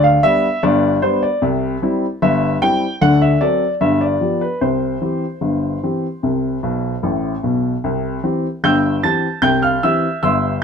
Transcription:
0.00 0.17 D2 medium
0.00 0.17 D3 medium
0.00 0.23 F5 medium
0.23 0.45 G3 medium
0.23 0.46 B3 medium
0.23 0.46 D4 medium
0.23 0.61 E5 loud
0.63 0.97 G1 medium
0.63 0.97 G2 medium
0.63 0.95 D5 medium
1.02 1.24 G3 soft
1.02 1.25 B3 medium
1.02 1.25 D4 medium
1.02 1.22 C5 medium
1.23 1.42 D5 medium
1.42 1.76 C2 medium
1.42 1.76 C3 medium
1.82 2.04 G3 medium
1.82 2.05 C4 medium
1.82 2.05 E4 medium
2.22 2.56 G1 medium
2.22 2.56 G2 medium
2.22 2.54 E5 medium
2.62 2.84 G3 soft
2.62 2.84 C4 soft
2.62 2.84 E4 medium
2.62 2.94 G5 loud
3.01 3.35 D2 medium
3.01 3.35 D3 medium
3.01 3.21 F#5 loud
3.22 3.41 E5 medium
3.41 3.63 F#3 soft
3.41 3.64 C4 soft
3.41 3.64 A4 medium
3.41 3.73 D5 medium
3.81 4.15 G1 medium
3.81 4.15 G2 medium
3.81 4.01 E5 medium
4.01 4.39 D5 medium
4.21 4.43 F3 soft
4.21 4.43 B3 soft
4.21 4.44 G4 soft
4.41 4.62 B4 medium
4.61 4.96 C2 medium
4.61 4.96 C3 medium
4.61 7.39 C5 medium
5.01 5.24 E3 soft
5.01 5.24 C4 soft
5.01 5.24 G4 soft
5.41 5.76 G1 soft
5.41 5.76 G2 soft
5.83 6.05 E3 soft
5.83 6.05 C4 soft
5.83 6.06 G4 soft
6.23 6.57 C2 soft
6.23 6.57 C3 medium
6.63 6.93 B1 medium
6.63 6.93 B2 medium
7.03 7.33 A1 medium
7.03 7.33 A2 soft
7.43 7.73 B1 medium
7.43 7.74 B2 soft
7.84 8.18 C2 medium
7.84 8.18 C3 medium
8.23 8.45 E3 soft
8.23 8.46 C4 soft
8.23 8.46 G4 soft
8.64 8.98 G1 medium
8.64 8.98 G2 medium
8.64 9.01 G5 medium
8.64 9.01 E6 medium
8.64 8.96 G6 medium
9.03 9.25 E3 soft
9.03 9.26 C4 soft
9.03 9.26 G4 soft
9.03 9.41 A5 medium
9.03 9.35 A6 medium
9.42 9.77 C2 medium
9.42 9.77 C3 medium
9.42 9.62 G5 medium
9.42 9.63 G6 medium
9.62 9.82 F5 medium
9.62 9.83 F6 medium
9.83 10.05 E3 soft
9.83 10.06 C4 soft
9.83 10.06 G4 soft
9.83 10.21 E5 medium
9.83 10.15 E6 medium
10.23 10.57 G1 medium
10.23 10.57 G2 medium
10.23 10.61 E5 medium
10.23 10.61 C6 medium
10.23 10.55 E6 medium

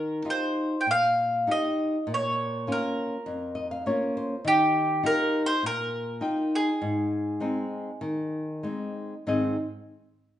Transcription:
0.00 0.25 D#3 medium
0.00 0.29 A#4 medium
0.25 0.75 D#4 soft
0.25 0.75 F4 soft
0.25 0.75 G4 soft
0.30 0.84 C5 medium
0.81 0.88 G5 medium
0.87 1.46 A#2 medium
0.91 1.52 F5 loud
1.47 1.96 D#4 soft
1.47 1.97 F4 soft
1.47 1.96 G4 medium
1.51 2.12 D#5 medium
2.07 2.66 A#2 medium
2.14 2.72 C#5 medium
2.67 3.15 A#3 soft
2.67 3.15 C#4 soft
2.67 3.15 F4 medium
2.72 3.84 A#4 medium
3.26 3.84 F2 medium
3.55 3.70 D#5 medium
3.71 3.85 F5 medium
3.86 4.34 A#3 soft
3.86 4.34 C#4 soft
3.86 4.34 F4 medium
3.86 4.14 C#5 medium
4.17 4.44 C5 medium
4.45 5.03 D#3 medium
4.45 5.02 G4 medium
5.03 5.51 D#4 medium
5.03 5.51 F4 soft
5.03 5.52 G4 medium
5.03 5.42 A#4 loud
5.46 5.65 C5 loud
5.63 6.21 A#2 medium
5.63 6.56 A#4 loud
6.21 6.69 D#4 medium
6.21 6.69 F4 soft
6.21 6.70 G5 medium
6.55 8.62 G#4 medium
6.82 7.40 G#2 medium
7.40 7.89 G#3 soft
7.40 7.90 C4 soft
7.40 7.90 D#4 medium
8.01 8.62 D#3 medium
8.63 9.13 G#3 soft
8.63 9.13 C4 soft
8.63 9.14 D#4 soft
9.27 9.54 G#2 medium
9.27 9.54 D#3 medium
9.27 9.55 C4 soft
9.27 9.55 D#4 soft
9.27 9.55 G#4 soft
9.27 9.55 D#5 medium

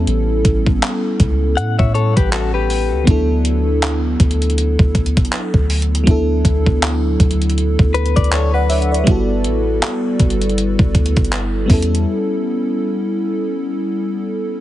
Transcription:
0.00 2.64 G3 medium
0.00 2.65 B3 medium
0.00 2.66 C#4 medium
0.00 2.67 E4 medium
0.00 2.68 A4 medium
0.07 0.43 A1 loud
0.07 closed hi-hat medium
0.45 0.81 A1 loud
0.45 kick loud
0.45 closed hi-hat medium
0.66 kick medium
0.82 clap loud
0.82 closed hi-hat medium
1.20 1.59 C#2 loud
1.20 kick medium
1.20 closed hi-hat medium
1.57 1.78 A2 loud
1.57 1.78 F#5 medium
1.57 closed hi-hat medium
1.79 2.15 A2 loud
1.79 1.93 C#5 medium
1.79 1.94 E5 medium
1.79 kick loud
1.94 2.15 A4 medium
1.94 2.15 C#5 medium
1.94 closed hi-hat soft
2.16 2.93 A1 loud
2.16 2.32 G4 medium
2.16 2.31 B4 medium
2.16 kick medium
2.16 closed hi-hat medium
2.32 2.53 F#4 medium
2.32 2.53 A4 medium
2.32 clap loud
2.32 closed hi-hat medium
2.54 3.05 G4 medium
2.54 3.04 B4 medium
2.70 open hi-hat medium
2.92 3.06 C#2 medium
3.04 4.16 D2 loud
3.04 3.13 E3 medium
3.04 6.02 B3 medium
3.04 6.03 D4 medium
3.04 kick loud
3.04 closed hi-hat medium
3.09 6.02 F#3 medium
3.09 6.04 E4 medium
3.09 6.05 A4 medium
3.45 closed hi-hat medium
3.82 clap loud
3.82 closed hi-hat medium
4.20 4.77 D2 loud
4.20 kick medium
4.20 closed hi-hat medium
4.31 closed hi-hat medium
4.42 closed hi-hat medium
4.50 closed hi-hat soft
4.58 closed hi-hat medium
4.79 5.15 D2 loud
4.79 kick loud
4.95 kick medium
4.95 closed hi-hat soft
5.06 closed hi-hat soft
5.17 kick loud
5.17 closed hi-hat medium
5.25 closed hi-hat soft
5.32 clap loud
5.32 closed hi-hat medium
5.54 6.05 D2 loud
5.54 kick medium
5.70 closed hi-hat soft
5.70 open hi-hat medium
5.82 closed hi-hat medium
5.95 closed hi-hat medium
6.04 6.43 D2 loud
6.04 9.01 F#3 medium
6.04 9.02 B3 medium
6.04 9.03 D4 medium
6.04 kick loud
6.04 closed hi-hat medium
6.09 9.04 E4 medium
6.09 9.05 A4 medium
6.45 7.17 D2 loud
6.45 kick medium
6.45 closed hi-hat medium
6.66 kick medium
6.82 clap loud
6.82 closed hi-hat medium
7.20 7.77 D2 loud
7.20 kick loud
7.20 closed hi-hat medium
7.31 closed hi-hat medium
7.42 closed hi-hat medium
7.50 closed hi-hat soft
7.58 closed hi-hat medium
7.79 8.15 D2 loud
7.79 kick loud
7.94 8.15 B4 medium
7.94 closed hi-hat soft
8.06 closed hi-hat soft
8.16 9.04 D2 loud
8.16 8.31 B4 medium
8.16 8.31 D5 medium
8.16 kick medium
8.16 closed hi-hat soft
8.24 closed hi-hat soft
8.32 8.53 A4 medium
8.32 8.53 B4 medium
8.32 8.53 C#5 medium
8.32 8.53 D5 medium
8.32 clap loud
8.32 closed hi-hat medium
8.54 9.04 B4 medium
8.54 8.69 D5 medium
8.54 8.69 F#5 medium
8.69 8.90 C#5 medium
8.69 8.90 E5 medium
8.69 closed hi-hat soft
8.69 open hi-hat medium
8.82 closed hi-hat medium
8.92 9.28 B4 medium
8.92 9.27 D5 medium
8.92 closed hi-hat medium
9.04 9.46 G1 loud
9.04 11.64 G3 medium
9.04 11.65 B3 medium
9.04 11.66 E4 medium
9.04 kick loud
9.04 closed hi-hat medium
9.09 11.67 F#4 medium
9.09 11.68 A4 medium
9.44 9.80 A1 medium
9.44 closed hi-hat medium
9.82 clap loud
9.82 closed hi-hat medium
10.20 10.77 G1 loud
10.20 kick loud
10.20 closed hi-hat medium
10.30 closed hi-hat medium
10.41 closed hi-hat medium
10.49 closed hi-hat soft
10.58 closed hi-hat medium
10.79 10.94 G1 loud
10.79 kick loud
10.95 11.16 D2 loud
10.95 kick loud
10.95 closed hi-hat medium
11.06 closed hi-hat medium
11.16 11.68 G1 loud
11.16 kick medium
11.16 closed hi-hat soft
11.25 closed hi-hat soft
11.32 clap loud
11.32 closed hi-hat medium
11.66 12.06 E2 loud
11.66 14.61 G3 medium
11.66 14.61 B3 medium
11.66 14.61 C#4 medium
11.66 kick loud
11.70 14.61 E4 medium
11.70 14.61 A4 medium
11.70 closed hi-hat soft
11.70 open hi-hat medium
11.82 closed hi-hat medium
11.95 closed hi-hat medium

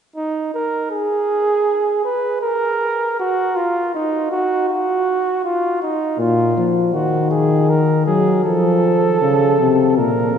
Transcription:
0.16 0.51 D#4 medium
0.54 0.90 A#4 medium
0.91 2.02 G#4 medium
2.05 2.41 B4 medium
2.42 3.16 A#4 medium
3.20 3.58 F#4 medium
3.56 3.93 F4 medium
3.94 4.31 D#4 medium
4.31 4.68 F#4 medium
4.69 5.43 F#4 medium
5.44 5.81 F4 medium
5.82 6.19 D#4 medium
6.19 6.54 A#2 medium
6.19 6.68 F4 medium
6.58 6.94 F3 medium
6.94 8.05 D#3 medium
6.94 7.29 F#4 medium
7.31 7.71 G#4 medium
7.69 8.06 A#4 medium
8.06 8.45 F#3 medium
8.06 8.44 G#4 medium
8.45 9.20 F3 medium
8.45 9.93 A4 medium
9.21 9.58 C#3 medium
9.59 10.00 C3 medium
9.97 10.35 A#2 medium
9.97 10.38 A#4 medium

